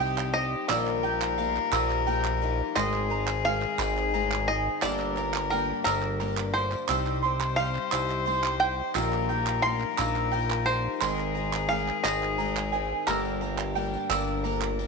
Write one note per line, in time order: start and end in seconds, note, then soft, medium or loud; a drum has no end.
0.00 0.55 C2 loud
0.00 0.65 C2 medium
0.00 0.65 C3 medium
0.00 0.34 G3 medium
0.00 0.69 G3 medium
0.00 0.35 C4 medium
0.00 0.71 C4 medium
0.00 0.69 D#4 medium
0.00 0.34 D#4 medium
0.00 0.69 G4 loud
0.00 0.33 G4 medium
0.00 0.71 C5 medium
0.00 0.33 D#5 medium
0.00 0.71 D#5 loud
0.00 0.33 F5 loud
0.00 0.69 G5 medium
0.00 0.68 D#6 medium
0.18 clap medium
0.34 0.69 C4 medium
0.34 0.69 D#4 medium
0.34 0.69 G4 medium
0.34 0.68 D#5 loud
0.34 0.69 D#5 medium
0.67 2.72 A#1 medium
0.67 1.59 A#1 medium
0.67 1.03 A#2 medium
0.67 2.72 A#2 medium
0.67 1.04 D#3 medium
0.67 1.04 F3 medium
0.67 1.43 G3 medium
0.67 1.04 A#3 medium
0.67 1.43 D#4 medium
0.67 1.03 D#4 medium
0.67 1.43 F4 medium
0.67 1.02 G4 medium
0.67 2.77 A#4 loud
0.67 1.43 A#4 medium
0.67 1.42 D5 medium
0.67 1.43 F5 loud
0.67 1.71 E6 loud
0.67 clap loud
0.67 tambourine medium
0.87 clap soft
1.03 1.37 F3 soft
1.03 1.38 A#3 medium
1.03 1.38 D#4 medium
1.03 1.38 G4 medium
1.03 2.05 G5 medium
1.21 clap medium
1.21 tambourine soft
1.38 1.73 F3 medium
1.38 1.72 A#3 medium
1.38 1.72 D#4 medium
1.38 1.72 G4 medium
1.38 2.76 F5 medium
1.38 tambourine soft
1.56 clap soft
1.72 2.62 A#1 loud
1.72 2.08 A#2 medium
1.72 2.08 D#3 medium
1.72 2.06 F3 medium
1.72 2.47 G3 medium
1.72 2.06 A#3 medium
1.72 2.46 D#4 medium
1.72 2.07 D#4 medium
1.72 2.47 F4 medium
1.72 2.07 G4 medium
1.72 2.47 A#4 medium
1.72 2.47 F5 medium
1.72 2.75 E6 loud
1.72 clap loud
1.72 tambourine loud
1.90 clap soft
1.90 tambourine soft
2.07 2.41 F3 medium
2.07 2.42 A#3 medium
2.07 2.41 D#4 medium
2.07 2.41 G4 medium
2.07 2.76 G5 medium
2.07 2.39 G5 medium
2.25 clap medium
2.42 2.75 F3 medium
2.42 2.76 A#3 medium
2.42 2.76 D#4 medium
2.42 2.76 G4 medium
2.42 2.74 D#5 medium
2.76 4.79 G#1 medium
2.76 3.66 G#1 medium
2.76 4.79 G#2 medium
2.76 3.50 G#3 medium
2.76 3.10 G#3 medium
2.76 3.50 C4 medium
2.76 3.10 C4 medium
2.76 3.50 D#4 medium
2.76 3.10 D#4 medium
2.76 4.83 G#4 loud
2.76 3.50 A#4 medium
2.76 3.09 A#4 medium
2.76 3.45 D#5 loud
2.76 3.50 D#5 medium
2.76 4.14 C6 loud
2.76 clap loud
2.76 tambourine loud
2.94 clap soft
3.10 3.45 C4 soft
3.10 3.45 D#4 medium
3.10 3.45 A#4 medium
3.10 4.13 A#5 medium
3.28 clap medium
3.28 tambourine soft
3.45 3.79 G#3 medium
3.45 3.79 C4 medium
3.45 3.79 D#4 medium
3.45 3.78 A#4 medium
3.45 4.47 F5 loud
3.45 4.47 G#5 medium
3.45 tambourine soft
3.62 clap soft
3.79 4.69 G#1 loud
3.79 4.53 G#3 medium
3.79 4.13 G#3 medium
3.79 4.53 C4 medium
3.79 4.14 C4 medium
3.79 4.53 D#4 medium
3.79 4.14 D#4 medium
3.79 4.53 A#4 medium
3.79 4.14 A#4 medium
3.79 4.53 D#5 medium
3.79 clap loud
3.79 tambourine medium
3.97 clap soft
4.14 4.48 G#3 medium
4.14 4.49 C4 medium
4.14 4.49 D#4 medium
4.14 4.48 A#4 medium
4.14 4.83 A#5 medium
4.32 clap medium
4.48 4.83 C4 medium
4.48 4.84 D#4 medium
4.48 4.83 A#4 medium
4.48 4.82 D#5 medium
4.48 4.83 G#5 medium
4.81 6.85 G1 medium
4.81 5.73 G1 loud
4.81 5.17 G2 medium
4.81 6.85 G2 medium
4.81 5.17 D3 medium
4.81 5.56 G3 medium
4.81 5.18 G3 medium
4.81 5.57 A#3 medium
4.81 5.17 A#3 medium
4.81 5.57 D4 medium
4.81 5.16 D4 medium
4.81 5.15 G4 medium
4.81 6.54 A#4 loud
4.81 5.57 A#4 medium
4.81 5.47 D5 loud
4.81 5.57 D5 loud
4.81 5.84 E6 loud
4.81 clap loud
4.81 tambourine medium
5.00 clap soft
5.00 tambourine soft
5.17 5.50 G3 medium
5.17 5.50 A#3 soft
5.17 5.51 D4 medium
5.17 5.51 G4 medium
5.17 6.19 A#5 medium
5.17 clap soft
5.17 tambourine soft
5.34 clap medium
5.34 tambourine soft
5.50 5.86 G3 medium
5.50 5.86 A#3 medium
5.50 5.86 D4 medium
5.50 5.85 G4 medium
5.50 5.83 A#4 medium
5.50 6.89 G5 medium
5.50 tambourine soft
5.84 6.76 G1 loud
5.84 6.21 G2 medium
5.84 6.21 D3 medium
5.84 6.60 G3 medium
5.84 6.19 G3 medium
5.84 6.60 A#3 medium
5.84 6.20 A#3 medium
5.84 6.60 D4 medium
5.84 6.20 D4 medium
5.84 6.21 G4 medium
5.84 6.53 A#4 medium
5.84 6.60 A#4 medium
5.84 6.60 D5 medium
5.84 6.87 E6 loud
5.84 clap loud
5.84 tambourine loud
6.03 clap soft
6.20 6.55 G3 medium
6.20 6.55 A#3 medium
6.20 6.54 D4 medium
6.20 6.54 G4 medium
6.20 6.89 A#5 medium
6.20 clap soft
6.37 clap medium
6.54 6.89 G3 soft
6.54 6.90 A#3 soft
6.54 6.89 D4 medium
6.54 6.89 G4 medium
6.54 7.60 C5 medium
6.54 tambourine soft
6.72 clap soft
6.72 tambourine soft
6.88 8.91 C2 medium
6.88 7.79 C2 medium
6.88 8.91 C3 medium
6.88 7.24 C3 medium
6.88 7.62 G3 medium
6.88 7.24 G3 medium
6.88 7.62 C4 medium
6.88 7.24 C4 medium
6.88 7.63 D#4 medium
6.88 7.23 D#4 medium
6.88 7.22 G4 medium
6.88 7.63 C5 medium
6.88 8.96 C5 loud
6.88 7.63 G5 loud
6.88 7.90 E6 loud
6.88 clap loud
6.88 tambourine medium
7.07 clap soft
7.22 7.58 C4 medium
7.22 7.58 D#4 medium
7.22 7.58 G4 medium
7.22 8.25 C6 medium
7.41 clap loud
7.41 tambourine soft
7.56 7.92 G3 medium
7.56 7.92 C4 medium
7.56 7.91 D#4 medium
7.56 7.91 G4 medium
7.56 8.56 F5 loud
7.56 8.59 G5 medium
7.56 tambourine soft
7.75 clap soft
7.92 8.82 C2 loud
7.92 8.27 C3 medium
7.92 8.66 G3 medium
7.92 8.25 G3 medium
7.92 8.66 C4 medium
7.92 8.26 C4 medium
7.92 8.66 D#4 medium
7.92 8.26 D#4 medium
7.92 8.27 G4 medium
7.92 8.66 C5 medium
7.92 8.66 G5 medium
7.92 8.93 E6 loud
7.92 clap loud
7.92 tambourine medium
8.09 clap soft
8.09 tambourine soft
8.26 8.61 G3 medium
8.26 8.61 C4 medium
8.26 8.61 D#4 medium
8.26 8.59 G4 medium
8.26 8.95 C6 medium
8.44 clap medium
8.60 8.96 C4 soft
8.60 8.95 D#4 medium
8.60 8.95 G4 medium
8.60 9.59 G5 loud
8.60 8.95 G5 medium
8.94 10.97 A#1 medium
8.94 9.85 A#1 loud
8.94 9.29 A#2 medium
8.94 10.97 A#2 medium
8.94 9.30 D#3 medium
8.94 9.30 F3 medium
8.94 9.69 G3 medium
8.94 9.29 A#3 medium
8.94 9.69 D#4 medium
8.94 9.29 D#4 medium
8.94 9.69 F4 medium
8.94 9.28 G4 medium
8.94 11.03 A#4 loud
8.94 9.69 A#4 medium
8.94 9.69 F5 loud
8.94 9.96 E6 loud
8.94 clap medium
8.94 tambourine loud
9.12 clap soft
9.29 9.62 F3 medium
9.29 9.63 A#3 soft
9.29 9.64 D#4 medium
9.29 9.64 G4 medium
9.29 10.30 G5 medium
9.46 clap medium
9.46 tambourine soft
9.62 9.98 F3 medium
9.62 9.97 A#3 medium
9.62 9.97 D#4 medium
9.62 9.97 G4 medium
9.62 11.01 F5 medium
9.62 10.62 C6 loud
9.62 tambourine soft
9.80 clap soft
9.97 10.88 A#1 loud
9.97 10.33 A#2 medium
9.97 10.33 D#3 medium
9.97 10.31 F3 medium
9.97 10.72 G3 medium
9.97 10.32 A#3 medium
9.97 10.72 D#4 medium
9.97 10.33 D#4 medium
9.97 10.72 F4 medium
9.97 10.32 G4 medium
9.97 10.72 A#4 medium
9.97 10.72 F5 medium
9.97 11.00 E6 loud
9.97 clap loud
9.97 tambourine loud
10.15 clap soft
10.15 tambourine soft
10.31 10.67 F3 medium
10.31 10.67 A#3 medium
10.31 10.66 D#4 medium
10.31 10.66 G4 medium
10.31 11.01 G5 medium
10.50 clap medium
10.66 11.01 F3 medium
10.66 11.01 A#3 soft
10.66 11.01 D#4 medium
10.66 11.01 G4 medium
10.66 11.65 C5 loud
11.01 13.03 G#1 medium
11.01 11.91 G#1 loud
11.01 13.03 G#2 medium
11.01 11.75 G#3 medium
11.01 11.36 G#3 medium
11.01 11.75 C4 medium
11.01 11.36 C4 medium
11.01 11.75 D#4 medium
11.01 11.35 D#4 medium
11.01 13.08 G#4 loud
11.01 11.75 A#4 medium
11.01 11.34 A#4 medium
11.01 11.75 D#5 loud
11.01 12.38 C6 loud
11.01 clap loud
11.01 tambourine loud
11.19 clap soft
11.35 11.70 C4 medium
11.35 11.70 D#4 medium
11.35 11.70 A#4 medium
11.35 12.37 A#5 medium
11.53 clap medium
11.53 tambourine soft
11.69 12.04 G#3 medium
11.69 12.04 C4 medium
11.69 12.04 D#4 medium
11.69 12.03 A#4 medium
11.69 12.01 F5 loud
11.69 12.71 G#5 medium
11.69 tambourine soft
11.88 clap soft
12.04 12.94 G#1 loud
12.04 12.78 G#3 medium
12.04 12.37 G#3 medium
12.04 12.78 C4 medium
12.04 12.38 C4 medium
12.04 12.78 D#4 medium
12.04 12.39 D#4 medium
12.04 12.78 A#4 medium
12.04 12.39 A#4 medium
12.04 13.03 D#5 loud
12.04 12.78 D#5 medium
12.04 clap loud
12.04 tambourine loud
12.22 clap soft
12.22 tambourine soft
12.38 12.73 G#3 medium
12.38 12.73 C4 medium
12.38 12.73 D#4 medium
12.38 12.72 A#4 medium
12.38 13.07 A#5 medium
12.57 clap medium
12.72 13.08 C4 medium
12.72 13.08 D#4 medium
12.72 13.07 A#4 medium
12.72 13.07 G#5 medium
13.07 13.97 G1 loud
13.07 14.87 G1 medium
13.07 13.42 G2 medium
13.07 14.87 G2 medium
13.07 13.42 D3 medium
13.07 13.81 G3 medium
13.07 13.42 G3 medium
13.07 13.81 A#3 medium
13.07 13.42 A#3 medium
13.07 13.81 D4 medium
13.07 13.41 D4 medium
13.07 14.78 G4 medium
13.07 14.40 A#4 medium
13.07 13.81 A#4 medium
13.07 13.41 A#4 loud
13.07 13.81 D5 medium
13.07 14.09 E6 loud
13.07 clap loud
13.07 tambourine medium
13.25 tambourine soft
13.41 13.75 G3 soft
13.41 13.75 A#3 medium
13.41 13.76 D4 medium
13.41 13.76 A#4 medium
13.41 14.43 A#5 medium
13.41 tambourine soft
13.58 clap medium
13.75 14.10 G3 medium
13.75 14.10 A#3 medium
13.75 14.09 D4 medium
13.75 14.09 A#4 medium
13.75 14.87 G5 medium
13.75 tambourine soft
13.93 tambourine soft
14.10 14.87 G1 loud
14.10 14.45 G2 medium
14.10 14.45 D3 medium
14.10 14.84 G3 medium
14.10 14.43 G3 medium
14.10 14.84 A#3 medium
14.10 14.44 A#3 medium
14.10 14.84 D4 medium
14.10 14.45 D4 medium
14.10 14.84 A#4 medium
14.10 14.45 A#4 medium
14.10 14.84 D5 loud
14.10 14.87 E6 loud
14.10 clap loud
14.10 tambourine loud
14.28 tambourine soft
14.44 14.79 G3 medium
14.44 14.79 A#3 medium
14.44 14.78 D4 medium
14.44 14.78 A#4 medium
14.44 14.87 A#5 medium
14.44 tambourine soft
14.62 clap medium
14.79 14.87 G3 medium
14.79 14.87 A#3 medium
14.79 14.87 D4 medium
14.79 14.87 A#4 medium
14.79 tambourine soft